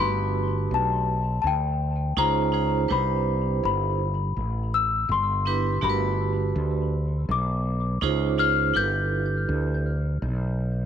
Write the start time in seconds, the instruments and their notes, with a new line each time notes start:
Already playing: fretless electric bass G1, vibraphone A3 D4 F#4
0.00 vibraphone G4 B4, celesta B5
0.71 fretless electric bass B1, celesta A5
1.42 fretless electric bass D2, celesta A5
1.47 celesta G5
2.17 fretless electric bass C#2, vibraphone C#4 D#4 F4 G#4 C5, celesta A#5
2.52 vibraphone C#4 D#4 F4 G#4 C5
2.88 fretless electric bass C2, vibraphone D4 E4 G4 B4 C5, celesta B5
3.63 fretless electric bass G1, celesta B5
4.37 fretless electric bass A1
4.74 celesta E6
5.09 fretless electric bass G1, celesta C6
5.45 vibraphone B3 D4 E4 G4 B4
5.81 fretless electric bass G1, vibraphone A3 D4 F#4 G4 A#4, celesta B5
5.90 vibraphone B4
6.56 fretless electric bass D2
7.29 fretless electric bass B1, celesta D6
8.01 fretless electric bass C#2, vibraphone C#4 D#4 F4 G#4 C5
8.38 vibraphone C#4 D#4 F4 G#4 C5, celesta F6
8.74 fretless electric bass G1, vibraphone D4 E4 G4 A4 B4, celesta G6
9.49 fretless electric bass D2
10.22 fretless electric bass B1